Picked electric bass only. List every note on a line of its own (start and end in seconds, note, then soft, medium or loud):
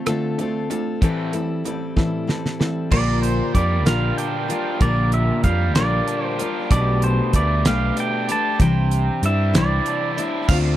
2.91 3.40 A#1 medium
3.55 3.86 F2 medium
3.86 4.10 A#1 medium
4.81 5.30 A#1 medium
5.44 5.75 F2 medium
5.75 6.00 A#1 medium
6.71 7.19 B1 medium
7.34 7.66 D2 medium
7.66 7.90 B1 loud
8.60 9.08 C2 medium
9.23 9.56 G2 loud
9.55 9.79 C2 loud
10.49 10.77 D2 medium